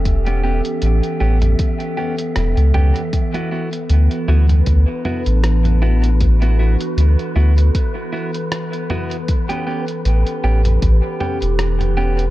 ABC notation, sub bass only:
X:1
M:4/4
L:1/16
Q:"Swing 16ths" 1/4=78
K:Amix
V:1 name="Sub bass" clef=bass
E,,,3 z A,,, z A,,,2 z4 E,,, C,, C,, z | z4 D,, z D,,2 D,, z2 A,,,4- A,,,- | A,,,3 z D,, z D,,2 z8 | z4 A,,, z A,,,2 A,,, z2 E,,,4- E,,, |]